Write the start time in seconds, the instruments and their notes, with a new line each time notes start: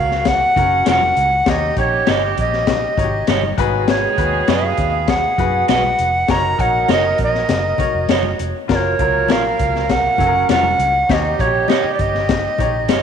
Already playing: fingered electric bass C#2, horn section C#3 F#3 A#3 F#4, upright piano F#4 A#4 F5, recorder F5
0.11 snare
0.25 recorder F#5, kick, snare, closed hi-hat, muted conga
0.56 fingered electric bass F#1, upright piano C#4 F#4 A#4, kick, closed hi-hat, muted conga, low conga
0.86 fingered electric bass F1, clean electric guitar C#4 F4 A#4, snare, closed hi-hat, high conga
0.90 recorder F#5
1.02 high conga
1.17 fingered electric bass C#2, closed hi-hat
1.45 fingered electric bass D#2, horn section D#3 G3 C#4 G4, upright piano D#3 D#4 G4 C#5, kick, snare, closed hi-hat
1.50 recorder D#5
1.77 fingered electric bass A#1, upright piano D#4 G4 C#5, recorder C#5, kick, closed hi-hat
2.07 fingered electric bass G1, clean electric guitar G4 C#5 D#5, snare, closed hi-hat, high conga
2.11 recorder D#5
2.37 fingered electric bass A#1, recorder D#5, kick, closed hi-hat, muted conga
2.53 snare
2.67 kick, snare, closed hi-hat, muted conga, low conga
2.97 fingered electric bass G#1, upright piano D#4 F#4 C#5, kick, closed hi-hat, muted conga, low conga
3.04 upright piano G4
3.27 fingered electric bass G1, clean electric guitar G4 C#5 D#5, snare, closed hi-hat, high conga
3.43 high conga
3.58 fingered electric bass G#1, upright piano G#2 F#4 G#4 B4, horn section D#3 G#3 B3 G#4, kick, closed hi-hat
3.88 recorder C#5, snare, closed hi-hat
4.18 fingered electric bass D#2, upright piano F#4 G#4 B4, kick, closed hi-hat
4.48 fingered electric bass F#2, clean electric guitar F#4 B4 D#5, recorder F5, snare, closed hi-hat, high conga
4.77 fingered electric bass D#2, kick, closed hi-hat
5.08 recorder F#5, kick, snare, closed hi-hat, muted conga
5.38 fingered electric bass F#2, upright piano F#4 G#4 B4, kick, closed hi-hat, muted conga, low conga
5.68 fingered electric bass B1, clean electric guitar F#4 B4 D#5, recorder F#5, snare, closed hi-hat, high conga
5.84 high conga
5.99 fingered electric bass F1, closed hi-hat
6.28 fingered electric bass F#1, horn section F#3 A#3 D#4 A#4, upright piano D#4 F#4 C#5, recorder A#5, kick, snare, closed hi-hat
6.58 fingered electric bass A#1, upright piano D#4 F#4 C#5, recorder F#5, kick, closed hi-hat
6.88 fingered electric bass F#1, clean electric guitar F#4 C#5 D#5, recorder D#5, snare, closed hi-hat, high conga
7.18 fingered electric bass A#1, kick, closed hi-hat, muted conga
7.23 recorder D#5
7.35 snare
7.49 fingered electric bass F#1, snare, closed hi-hat, muted conga, low conga
7.78 upright piano D#4 F#4 C#5, muted fingered electric bass stroke, kick, closed hi-hat, muted conga, low conga
7.94 fingered electric bass F1
8.09 fingered electric bass F#1, clean electric guitar F#4 C#5 D#5, snare, closed hi-hat, high conga
8.23 high conga
8.39 fingered electric bass F1, closed hi-hat
8.68 fingered electric bass F#1, horn section F3 F#3 A#3 A#4, upright piano F4 F#4 A#4, kick, snare, closed hi-hat
8.72 recorder C#5 D5
8.99 fingered electric bass C#2, upright piano F#3 F4 A#4, kick, closed hi-hat
9.28 fingered electric bass A#1, clean electric guitar C#4 F4 A#4, recorder F5, snare, closed hi-hat, high conga
9.59 fingered electric bass C#2, kick, closed hi-hat
9.75 snare
9.89 recorder F#5, kick, snare, closed hi-hat, muted conga
10.18 fingered electric bass F#1, upright piano F#3 C#4 A4, kick, closed hi-hat, muted conga, low conga
10.27 upright piano A#4
10.49 fingered electric bass F1, clean electric guitar C#4 F4 A#4, recorder F#5, snare, closed hi-hat, high conga
10.63 high conga
10.79 fingered electric bass C#2, closed hi-hat
11.08 fingered electric bass D#2, horn section D#3 G3 C#4 G4, upright piano D#3 D#4 G4 C#5, recorder E5, kick, snare, closed hi-hat
11.14 recorder D#5
11.39 fingered electric bass A#1, upright piano D#4 F#4 C#5, recorder C#5, kick, closed hi-hat
11.46 upright piano G4
11.68 clean electric guitar G4 C#5 D#5, recorder D#5, snare, closed hi-hat, high conga
11.84 muted fingered electric bass stroke
11.94 recorder D5
11.99 fingered electric bass G1, recorder D#5, kick, closed hi-hat, muted conga
12.15 snare
12.29 kick, snare, closed hi-hat, muted conga, low conga
12.58 fingered electric bass A#1, upright piano D#4 G4 C#5, kick, closed hi-hat, muted conga, low conga
12.88 fingered electric bass G1, clean electric guitar G4 C#5 D#5, snare, closed hi-hat, high conga